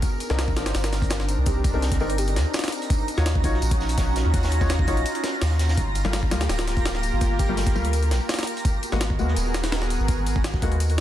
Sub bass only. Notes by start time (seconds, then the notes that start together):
0.30 C2
0.56 G1
0.75 G1
1.38 C2
1.74 C2
2.00 G1
2.36 D#2
3.17 D#2
3.44 A#1
3.62 A#1
4.25 D#2
4.61 D#2
4.88 A#1
5.42 D#2
5.78 G1
6.05 G1
6.31 D2
6.49 D1
7.13 G1
7.49 G1
7.75 D2
8.11 A#1
8.92 G#1
9.19 D#2
9.37 D#1
10.00 G#1
10.36 G#1
10.62 D#2